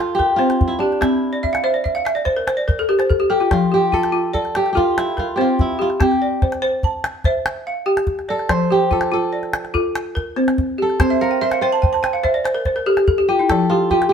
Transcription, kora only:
Already playing: F4 G4 A4
0.15 G4
0.36 F4
0.68 E4
0.79 D4
1.01 E4
3.30 G4
3.53 F4
3.74 G4
3.94 A4
4.34 A4
4.56 G4
4.73 G4
4.77 F4
4.98 E4
5.19 F4
5.36 G4
5.41 F4
5.61 E4
5.81 F4
6.02 G4
8.30 A4
8.50 C5
8.72 G4
8.92 A4
9.13 A4
10.82 A4
11.00 C5
11.21 A#4
11.42 C5
11.61 C5
13.28 G4
13.49 A4
13.70 F4
13.91 G4
14.09 G4

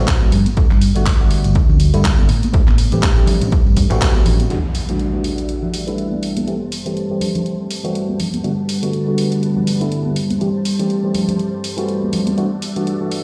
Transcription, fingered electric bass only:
Already playing: A2
0.22 A1
0.33 G2
0.57 G1
0.71 G2
0.96 G1
1.45 G1
1.55 muted fingered electric bass stroke
1.69 D2
1.94 G2
2.19 G1
2.29 A2
2.54 A1
2.68 A2
2.92 A1
3.28 muted fingered electric bass stroke
3.42 A1
3.66 G2
3.91 A2
4.26 A1

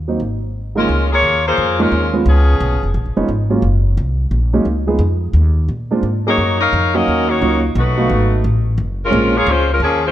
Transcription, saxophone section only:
0.78 G#3 C#4 F4 A#4
1.12 A#3 F4 G#4 C#5
1.47 A#3 F4 G#4 C5
1.81 G#3 C#4 F4 A#4
2.29 F3 B3 C#4 G#4
6.28 A#3 D#4 F#4 C#5
6.61 D#4 A#4 C#5 F5
6.95 C#4 F#4 A#4 D#5
7.29 A#3 D#4 F#4 C#5
7.77 A3 D#4 F#4 B4
9.05 G#3 C#4 F4 A#4
9.37 A#3 F4 G#4 C#5
9.49 G#3 C#4 F4 C5
9.73 G#3 C#4 F4 A#4
9.82 F3 A#3 C#4 G#4
10.07 G#3 C#4 F4 C5

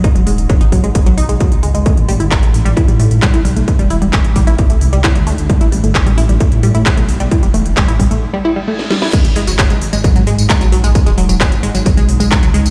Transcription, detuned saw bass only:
0.15 D#1
0.27 D#1
0.38 D#1
0.61 G#1
0.72 G#1
0.83 G#1
1.06 B1
1.18 B1
1.29 B1
1.52 C#2
1.63 C#2
1.74 C#2
1.97 A1
2.09 A1
2.20 G1
2.43 A1
2.54 A1
2.65 A1
2.88 A2
3.00 A2
3.11 A2
3.34 B1
3.45 B1
3.56 B1
3.79 E1
3.91 E1
4.02 E1
4.25 A1
4.36 A1
4.47 A1
4.70 C2
4.81 C2
4.93 C2
5.15 D2
5.27 D2
5.38 D2
5.61 A1
5.72 A1
5.84 G1
6.06 A1
6.18 A1
6.29 A1
6.52 A2
6.63 A2
6.74 A2
6.97 B1
7.09 B1
7.20 B1
7.43 E1
7.54 E1
7.65 E1
7.88 A1
8.00 A1
8.11 A1
9.25 G#1
9.36 G#1
9.47 F#1
9.70 G#1
9.81 G#1
9.93 G#1
10.15 G#2
10.27 G#2
10.38 G#2
10.61 A#1
10.72 A#1
10.84 A#1
11.06 D#1
11.18 D#1
11.29 D#1
11.52 G#1
11.63 G#1
11.74 G#1
11.97 B1
12.09 B1
12.20 B1
12.43 C#2
12.54 C#2
12.65 C#2

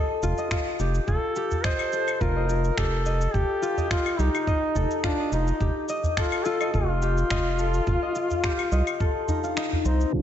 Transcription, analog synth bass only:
0.23 F1
0.80 F1
1.08 F1
2.21 F1
2.78 F1
3.34 F1
4.19 C2
4.76 F1
5.32 F1
5.61 F1
6.74 F1
7.31 F1
7.87 F1
8.72 C2
9.85 C2

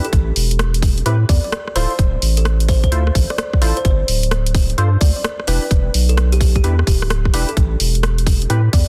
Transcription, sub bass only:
0.13 A1
0.36 E1
1.06 A2
1.29 E2
1.76 D1
1.99 D1
2.22 A1
2.92 D2
3.15 A1
3.62 A1
3.85 G1
4.08 D1
4.78 G2
5.01 D2
5.48 E1
5.71 E1
5.94 B1
6.64 E2
6.87 D1
7.34 E1
7.57 A1
7.80 E1
8.50 A2
8.73 E2

